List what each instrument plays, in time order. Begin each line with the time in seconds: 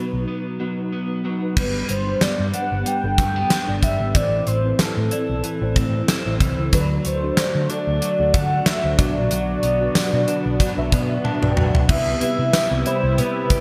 Already playing: tine electric piano B2 B3 D#4 F#4 B4, clean electric guitar F#3 B3 D#4, soft synth lead B4
0.13 picked electric bass B1
0.28 clean electric guitar B3
0.59 clean electric guitar F#3, tine electric piano B3 D#4 F#4 B4
0.92 clean electric guitar B3
1.24 clean electric guitar F#3, tine electric piano B3 D#4 F#4 B4
1.56 picked electric bass G1, tine electric piano G2 B3, clean electric guitar G3, soft synth lead B4, kick, crash
1.89 picked electric bass G1, clean electric guitar B3, soft synth lead C5, closed hi-hat
2.06 tine electric piano B3 D4 G4 B4
2.21 clean electric guitar G3, soft synth lead D5, muted picked electric bass stroke, snare, closed hi-hat
2.39 picked electric bass G2
2.53 tine electric piano B3 D4 G4 B4, clean electric guitar D4, soft synth lead F#5, closed hi-hat
2.72 picked electric bass G1
2.86 clean electric guitar G3, soft synth lead G5, closed hi-hat
3.03 picked electric bass G1, tine electric piano B3 D4 G4 A4
3.18 picked electric bass G2, clean electric guitar A3, kick, closed hi-hat
3.36 clean electric guitar B3
3.50 clean electric guitar D4, snare, closed hi-hat
3.67 picked electric bass G1, tine electric piano B3 D4 G4 D5
3.83 picked electric bass G1, clean electric guitar G3, soft synth lead E5, kick, closed hi-hat
4.00 picked electric bass G#1
4.14 picked electric bass A1, tine electric piano A2 C4 E4 A4 C5, clean electric guitar E3, soft synth lead D5, kick, closed hi-hat
4.47 picked electric bass A1, clean electric guitar C4, soft synth lead C5, closed hi-hat
4.64 tine electric piano C4 E4 A4 B4
4.79 clean electric guitar E3, soft synth lead A4, muted picked electric bass stroke, snare, closed hi-hat
4.97 picked electric bass A2
5.11 tine electric piano C4 E4 A4 D5, clean electric guitar E4, closed hi-hat
5.30 picked electric bass B1
5.44 clean electric guitar E3, closed hi-hat
5.61 picked electric bass A1, tine electric piano C4 E4 A4 C5
5.76 picked electric bass A2, clean electric guitar C4, kick, closed hi-hat
6.08 clean electric guitar E4, snare, closed hi-hat
6.25 picked electric bass A1, tine electric piano C4 E4 A4 C5
6.40 picked electric bass C2, clean electric guitar E3, kick, closed hi-hat
6.58 picked electric bass C#2
6.72 picked electric bass D2, analog synth pad D3 A3 F#4, tine electric piano D3 D4 F#4 A4 D5, clean electric guitar F#3, soft synth lead B4, kick, closed hi-hat
7.05 picked electric bass D2, clean electric guitar A3, soft synth lead C5, closed hi-hat
7.23 tine electric piano D4 F#4 A4 D5
7.37 clean electric guitar F#3, snare, closed hi-hat
7.55 picked electric bass D3
7.69 tine electric piano D4 F#4 A4 D5, clean electric guitar D4, soft synth lead D5, closed hi-hat
7.87 picked electric bass D2
8.02 clean electric guitar F#3, closed hi-hat
8.19 picked electric bass D2, tine electric piano D4 F#4 A4 D5
8.34 picked electric bass D3, clean electric guitar A3, soft synth lead F#5, kick, closed hi-hat
8.66 clean electric guitar D4, soft synth lead E5, snare, closed hi-hat
8.83 picked electric bass D2, tine electric piano D4 F#4 A4 C5
8.98 picked electric bass B1, tine electric piano B2 D4 F#4 B4 D5, clean electric guitar F#3, analog synth pad B3, soft synth lead D5, kick, closed hi-hat
9.16 picked electric bass A#1
9.31 picked electric bass B1, clean electric guitar F#3, closed hi-hat
9.63 picked electric bass B1, clean electric guitar B3, closed hi-hat
9.81 tine electric piano D4 F#4 B4 D5
9.95 clean electric guitar F#3, muted picked electric bass stroke, snare, closed hi-hat, tambourine
10.13 picked electric bass B2
10.27 tine electric piano D4 F#4 B4 D5, clean electric guitar D4, closed hi-hat
10.46 picked electric bass B1
10.60 clean electric guitar F#3, kick, closed hi-hat
10.77 picked electric bass B1, tine electric piano D4 F#4 B4 E5
10.92 picked electric bass B2, clean electric guitar B3, kick, closed hi-hat
11.24 clean electric guitar D4, tine electric piano A5, high tom
11.42 picked electric bass B1, tine electric piano D4 F#4 B4 D5, mid tom
11.46 tine electric piano G5
11.57 picked electric bass A#1, clean electric guitar F#3, mid tom
11.68 tine electric piano F#5
11.74 picked electric bass B1, floor tom
11.89 picked electric bass C2, tine electric piano C3 B3 C4 E4 G4 B4, analog synth pad C3 G3 E4, clean electric guitar B3, soft synth lead E5, kick, crash
12.21 tine electric piano G3 B3 E4 G4 B4, clean electric guitar E4, soft synth lead E5, closed hi-hat
12.39 picked electric bass C3
12.53 clean electric guitar B3, snare, closed hi-hat, tambourine
12.71 picked electric bass C2
12.85 tine electric piano C3 G3 E4 G4 B5, clean electric guitar E4, soft synth lead C5, closed hi-hat
13.04 picked electric bass C2
13.18 picked electric bass C3, clean electric guitar B3, soft synth lead B4, closed hi-hat
13.50 clean electric guitar G4, kick, closed hi-hat